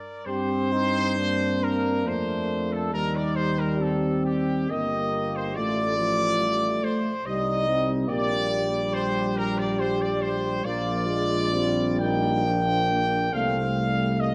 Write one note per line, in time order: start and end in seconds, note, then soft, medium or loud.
0.00 0.27 A#4 medium
0.00 0.23 D5 medium
0.26 2.07 G2 medium
0.26 1.14 C4 medium
0.26 0.74 G4 medium
0.26 1.62 C5 loud
0.72 1.20 D#4 medium
1.17 2.07 A#3 medium
1.17 2.08 C4 medium
1.17 1.62 D4 medium
1.62 2.91 D4 medium
1.62 2.07 A#4 loud
2.05 2.94 F2 medium
2.05 2.93 A3 medium
2.05 2.94 A#3 medium
2.05 2.72 C5 loud
2.72 2.94 A4 medium
2.92 4.69 D#2 medium
2.92 4.71 G3 medium
2.92 3.80 G3 medium
2.92 3.80 D#4 medium
2.92 3.14 A#4 loud
3.16 3.37 D5 medium
3.36 3.58 C5 loud
3.59 3.80 A#4 medium
3.78 4.71 C4 medium
3.78 4.70 G4 medium
3.78 4.26 A4 medium
4.25 4.70 G4 medium
4.69 5.56 G1 medium
4.69 5.55 A#3 medium
4.69 5.57 A#3 medium
4.69 5.59 G4 medium
4.69 5.36 D#5 loud
5.35 5.57 C5 loud
5.55 6.99 A1 medium
5.55 6.00 A3 medium
5.55 5.97 A3 medium
5.55 7.00 F4 medium
5.55 6.84 D5 loud
5.98 6.42 F3 medium
5.98 7.08 A3 medium
6.41 6.85 G3 medium
6.83 7.13 A3 medium
6.83 7.26 C5 loud
7.25 8.05 C2 medium
7.25 8.08 G3 medium
7.25 7.69 G3 medium
7.25 8.11 D#4 medium
7.25 7.92 D#5 loud
7.67 8.10 C4 medium
8.08 10.60 A#1 medium
8.08 9.77 G3 medium
8.08 8.66 A#3 medium
8.08 8.49 G4 medium
8.08 8.92 D5 loud
8.50 10.60 G4 medium
8.93 10.66 G3 medium
8.93 9.37 C5 loud
9.37 9.59 A#4 loud
9.58 9.80 D5 loud
9.79 10.63 G3 medium
9.79 10.01 C5 loud
10.01 10.22 D5 loud
10.21 10.64 C5 loud
10.64 13.29 A#1 medium
10.64 11.08 F3 medium
10.64 11.08 A#3 medium
10.64 11.51 F4 medium
10.64 12.00 D5 loud
11.07 11.54 G#3 medium
11.07 11.53 G#3 medium
11.53 12.45 G3 medium
11.53 12.00 C4 medium
11.53 12.00 F4 medium
11.99 13.31 A#3 medium
11.99 12.47 D#4 medium
11.99 13.30 G5 loud
12.45 12.89 F3 medium
12.45 13.31 D4 medium
12.90 13.34 A#3 medium
13.31 14.35 C2 medium
13.31 14.35 A3 medium
13.31 13.64 A3 medium
13.31 13.91 C4 medium
13.31 14.20 F5 loud
13.77 14.19 G3 medium
14.19 14.35 G3 medium
14.19 14.35 A#3 medium
14.19 14.35 D#5 loud